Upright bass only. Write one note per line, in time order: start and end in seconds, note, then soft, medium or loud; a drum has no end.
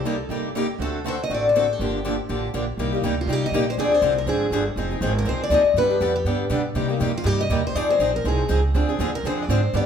0.00 0.20 C2 medium
0.29 0.69 G1 medium
0.79 1.19 D2 medium
1.30 1.69 A1 medium
1.79 2.19 G1 medium
2.29 2.50 A1 medium
2.54 2.75 A#1 medium
2.78 3.01 C2 medium
3.02 3.25 D2 medium
3.26 3.51 C2 medium
3.52 3.76 A#1 medium
3.77 4.01 D2 medium
4.02 4.26 C2 medium
4.26 4.50 G#1 medium
4.50 4.75 G1 medium
4.76 5.00 F1 medium
5.01 5.24 G#1 medium
5.25 5.38 C2 medium
5.38 muted upright bass stroke soft
5.50 5.63 D#2 medium
5.64 muted upright bass stroke soft
5.74 5.99 G2 medium
6.01 6.24 F2 medium
6.25 6.49 G2 medium
6.50 6.75 B2 medium
6.75 7.00 C3 medium
7.00 7.24 F2 medium
7.25 7.49 G2 medium
7.50 7.74 D#2 medium
7.75 7.99 F2 medium
7.99 8.24 A#1 medium
8.24 8.49 C2 medium
8.49 8.73 C#2 medium
8.74 8.98 D2 medium
8.99 9.23 D#2 loud
9.23 9.48 F2 medium
9.48 9.73 G#2 medium
9.73 9.86 G2 medium